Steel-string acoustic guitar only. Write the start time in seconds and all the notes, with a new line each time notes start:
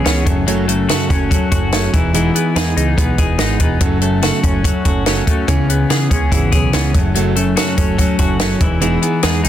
0.05 C#3 E3 B3 C#4 G#4
0.26 F#3 A3 C#4 A4
0.47 F#2 C#3 F#3 A3 C#4 A4
0.68 F#3 A3 C#4 A4
0.89 F#2 C#3 F#3 A3 C#4 A4
1.10 F#3 A3 C#4 A4
1.31 F#3 A3 C#4 A4
1.52 F#3 A3 C#4 A4
1.72 F#2 C#3 F#3 A3 C#4 A4
1.93 B3 D#4 G#4
2.13 E3 G#3 B3 D#4 G#4
2.34 B3 D#4 G#4
2.55 E3 G#3 B3 D#4 G#4
2.76 B3 D#4 G#4
2.97 G#3 B3 D#4 G#4
3.18 B3 D#4 G#4
3.39 E3 G#3 B3 D#4 G#4
3.60 B3 D#4 G#4
3.80 F#2 C#3 F#3 A3 C#4 A4
4.01 F#3 A3 C#4 A4
4.22 F#2 C#3 F#3 A3 C#4 A4
4.42 F#3 A3 C#4 A4
4.63 F#3 A3 C#4 A4
4.85 F#3 A3 C#4 A4
5.06 F#2 C#3 F#3 A3 C#4 A4
5.26 F#3 A3 C#4 A4
5.47 C#3 E3 B3 C#4 G#4
5.68 B3 C#4 G#4
5.90 C#3 E3 B3 C#4 G#4
6.10 B3 C#4 G#4
6.32 E3 B3 C#4 G#4
6.52 B3 C#4 G#4
6.73 C#3 E3 B3 C#4 G#4
6.94 F#3 A3 C#4 A4
7.15 F#2 C#3 F#3 A3 C#4 A4
7.35 F#3 A3 C#4 A4
7.56 F#2 C#3 F#3 A3 C#4 A4
7.77 F#3 A3 C#4 A4
7.98 F#3 A3 C#4 A4
8.19 F#3 A3 C#4 A4
8.40 F#2 C#3 F#3 A3 C#4 A4
8.60 B3 D#4 G#4
8.80 E3 G#3 B3 D#4 G#4
9.02 B3 D#4 G#4
9.23 E3 G#3 B3 D#4 G#4
9.44 B3 D#4 G#4